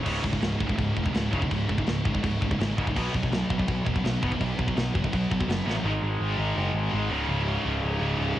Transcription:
0.05 picked electric bass C#1, distorted electric guitar C#2 G#2 C#3, kick, crash, china
0.24 picked electric bass C#1, distorted electric guitar C#2 G#2, kick
0.33 distorted electric guitar C#2 G#2, kick
0.42 picked electric bass C#1, distorted electric guitar C#2 G#2, snare, china
0.60 picked electric bass C#1, distorted electric guitar C#2 G#2 C#3, kick
0.69 distorted electric guitar C#2 G#2, kick
0.76 picked electric bass C#1, distorted electric guitar C#2 G#2, kick, china
0.80 distorted electric guitar C#2
0.96 picked electric bass E1, distorted electric guitar C#2 G#2, kick
1.06 distorted electric guitar C#2 G#2, kick
1.15 picked electric bass C#1, distorted electric guitar C#2 G#2 C#3, snare, china
1.33 picked electric bass E1, distorted electric guitar C#2 G#2 C#3, kick
1.42 distorted electric guitar C#2 G#2, kick
1.51 picked electric bass C#1, distorted electric guitar C#2 G#2 C#3, kick, china
1.69 picked electric bass C#1, distorted electric guitar C#2 G#2, kick
1.78 distorted electric guitar C#2 G#2, kick
1.87 picked electric bass C#1, distorted electric guitar C#2 G#2, snare, china
2.05 picked electric bass G#1, distorted electric guitar C#2 G#2 C#3, kick
2.14 distorted electric guitar C#2 G#2, kick
2.23 picked electric bass C#1, distorted electric guitar C#2 G#2, kick, china
2.42 picked electric bass C#1, distorted electric guitar C#2 G#2, kick
2.51 distorted electric guitar C#2 G#2, kick
2.59 picked electric bass G#1, distorted electric guitar C#2 G#2 C#3, snare, china
2.78 picked electric bass C#1, distorted electric guitar C#2 G#2 C#3, kick
2.87 distorted electric guitar C#2 G#2, kick
2.95 picked electric bass B1, distorted electric guitar B2 F#3 B3, kick, china, crash
3.14 picked electric bass B1, distorted electric guitar B2 F#3, kick
3.23 distorted electric guitar B2 F#3, kick
3.30 picked electric bass B1, distorted electric guitar B2 F#3, snare, china
3.50 picked electric bass B1, distorted electric guitar B2 F#3 B3, kick
3.58 distorted electric guitar B2 F#3, kick
3.67 picked electric bass B1, distorted electric guitar B2 F#3, kick, china
3.85 picked electric bass D#1, distorted electric guitar B2 F#3, kick
3.95 distorted electric guitar B2 F#3, kick
4.03 picked electric bass B1, distorted electric guitar B2 F#3 B3, snare, china
4.22 picked electric bass D#1, distorted electric guitar B2 F#3 B3, kick
4.31 distorted electric guitar B2 F#3, kick
4.40 picked electric bass B1, distorted electric guitar B2 F#3 B3, kick, china
4.58 picked electric bass B1, distorted electric guitar B2 F#3, kick
4.67 distorted electric guitar B2 F#3, kick
4.76 picked electric bass B1, distorted electric guitar B2 F#3, snare, china
4.94 picked electric bass F#1, distorted electric guitar B2 F#3 B3, kick
5.03 distorted electric guitar B2 F#3, kick
5.12 picked electric bass B1, distorted electric guitar B2 F#3, kick, china
5.31 picked electric bass B1, distorted electric guitar B2 F#3, kick
5.40 distorted electric guitar B2 F#3, kick
5.48 picked electric bass F#1, distorted electric guitar B2 F#3 B3, snare, china
5.66 picked electric bass A1, distorted electric guitar B2 F#3 B3, snare
5.76 distorted electric guitar B2 F#3
5.84 picked electric bass G#1, distorted electric guitar G#2 D#3 G#3
6.02 picked electric bass G#1, distorted electric guitar G#2 D#3 G#3
6.20 picked electric bass G#1, distorted electric guitar G#2 D#3 G#3
6.38 picked electric bass G#1, distorted electric guitar G#2 D#3 G#3
6.56 picked electric bass F#1, distorted electric guitar G#2 D#3 G#3
6.73 picked electric bass G#1, distorted electric guitar G#2
6.77 distorted electric guitar D#3 G#3
6.93 picked electric bass G#1, distorted electric guitar G#2 D#3 G#3
7.10 picked electric bass C#1, distorted electric guitar C#2 G#2 C#3
7.29 picked electric bass C#1, distorted electric guitar C#2 G#2 C#3
7.48 distorted electric guitar C#2 G#2 C#3
7.66 picked electric bass C#1, distorted electric guitar C#2 G#2 C#3
7.82 picked electric bass C#1, distorted electric guitar C#2 G#2 C#3
8.00 picked electric bass C#1, distorted electric guitar C#2 G#2
8.04 distorted electric guitar C#3
8.19 picked electric bass C#1, distorted electric guitar C#2 G#2 C#3

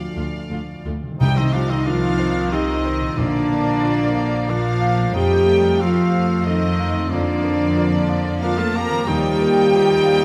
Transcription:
Already playing: grand piano D2 F3, harp D3 F3, french horn section A3 F4, violin section D5 F5
0.16 cello section D2, double bass section D2, viola section A3 F4
0.51 cello section D2, double bass section D2, viola section A3 F4
0.85 cello section D2, double bass section D2, viola section A3 F4
1.02 harp C3
1.07 harp G3
1.11 harp D#3
1.16 harp C5, flute section G5
1.20 grand piano C2, double bass section C2, timpani C3, viola section D#3 C4, cello section G3, cor anglais D#4, french horn section G4, violin section G5
1.36 cello section D#3, cor anglais C4, french horn section D#4, violin section D#5, flute section D#5
1.52 cello section F3, grand piano G3, cor anglais D4, french horn section F4, violin section F5, flute section F5
1.69 cello section D#3, cor anglais C4, french horn section D#4, violin section D#5, flute section D#5
1.85 grand piano D#3, cello section F3, cor anglais D4, french horn section F4, violin section F5, flute section F5
2.19 grand piano C5
2.52 cello section D#3, cor anglais C4, french horn section D#4, grand piano G4, violin section D#5, flute section D#5
2.85 grand piano C5
3.01 harp A#2
3.05 harp A#3
3.10 harp F4
3.14 grand piano A#1, viola section F3 A#3, french horn section D4, violin section D5, harp F5
3.18 double bass section A#1, cello section D3, cor anglais A#3, flute section D5, violin section D5
3.51 grand piano A#3
3.83 grand piano F4
4.15 grand piano F5
4.48 cello section F3, cor anglais D4, french horn section F4, grand piano A#4, violin section F5, flute section F5
4.81 grand piano F5
4.97 harp F3
5.01 harp A3
5.06 harp F4
5.11 grand piano F2, cor anglais D#4, harp F5
5.15 double bass section F2, cello section G3, viola section A3, french horn section G4, violin section G5, flute section G5
5.46 grand piano A3
5.79 cello section F3, cor anglais C4, grand piano F4, french horn section F4, violin section F5, flute section F5
6.14 grand piano F5
6.44 cello section D#3, cor anglais C4, french horn section D#4, grand piano A4, violin section D#5, flute section D#5
6.79 grand piano F5
6.93 harp F3
6.97 harp A#3
7.02 harp F4
7.06 french horn section D4, violin section D5, harp F5
7.10 grand piano F2, cello section D3, viola section F3 A#3, cor anglais A#3, flute section D5
7.43 grand piano A#3
7.76 grand piano F4
8.09 grand piano F5
8.41 cello section F3, cor anglais D4, french horn section F4, grand piano A#4, violin section F5, flute section F5
8.58 cello section A3, cor anglais F4, french horn section A4, flute section A5, violin section A5
8.74 cello section A#3, cor anglais G4, french horn section A#4, grand piano F5, flute section A#5, violin section A#5
8.89 harp D#3
8.94 harp A#3
8.98 harp F4
9.03 double bass section D#2, french horn section G4, harp F5
9.08 grand piano D#2, cello section G3, cor anglais D#4, violin section G5, flute section G5
9.41 grand piano A#3
9.74 grand piano F4
10.06 grand piano F5

